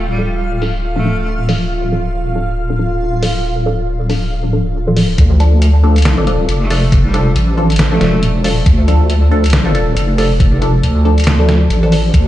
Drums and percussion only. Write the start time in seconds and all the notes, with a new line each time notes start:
0.62 open hi-hat
1.49 open hi-hat
3.23 open hi-hat
4.10 open hi-hat
4.97 open hi-hat
5.18 kick, closed hi-hat
5.40 closed hi-hat
5.62 closed hi-hat
5.96 closed hi-hat
5.98 closed hi-hat
6.02 snare, closed hi-hat
6.05 closed hi-hat
6.27 closed hi-hat
6.49 closed hi-hat
6.70 open hi-hat
6.92 kick, closed hi-hat
7.14 closed hi-hat
7.36 closed hi-hat
7.70 closed hi-hat
7.72 closed hi-hat
7.76 snare, closed hi-hat
7.79 closed hi-hat
8.01 snare, closed hi-hat
8.23 closed hi-hat
8.44 open hi-hat
8.66 kick, closed hi-hat
8.88 closed hi-hat
9.10 closed hi-hat
9.44 closed hi-hat
9.46 closed hi-hat
9.50 snare, closed hi-hat
9.53 closed hi-hat
9.75 closed hi-hat
9.97 closed hi-hat
10.18 open hi-hat
10.40 kick, closed hi-hat
10.62 closed hi-hat
10.83 closed hi-hat
11.18 closed hi-hat
11.20 closed hi-hat
11.24 snare, closed hi-hat
11.27 closed hi-hat
11.49 snare, closed hi-hat
11.70 closed hi-hat
11.92 open hi-hat
12.14 kick, closed hi-hat